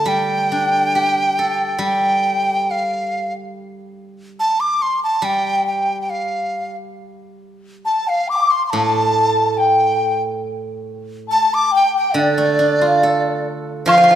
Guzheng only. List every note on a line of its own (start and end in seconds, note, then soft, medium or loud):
0.00 0.95 D3 medium
0.00 0.30 A3 soft
0.00 0.50 D4 soft
0.00 0.74 F4 soft
0.00 0.96 A4 soft
0.06 1.77 G3 soft
0.52 2.26 D4 soft
0.95 2.68 G4 soft
1.39 3.11 A4 soft
1.79 4.37 G3 soft
5.22 7.86 G3 soft
8.73 11.29 A2 soft
12.14 14.15 D3 soft
12.38 14.10 A3 soft
12.59 14.15 D4 soft
12.81 14.15 F4 soft
13.03 14.15 A4 soft
13.86 14.15 F3 medium